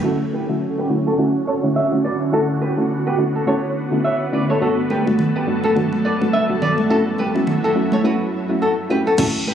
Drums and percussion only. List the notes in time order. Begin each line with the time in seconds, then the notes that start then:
4.90 high conga
5.07 high conga
5.19 low conga
5.64 high conga
5.77 low conga
5.93 high conga
6.21 high conga
6.62 low conga
6.78 high conga
7.18 high conga
7.36 high conga
7.47 low conga
7.92 high conga
9.18 kick, crash
9.47 high conga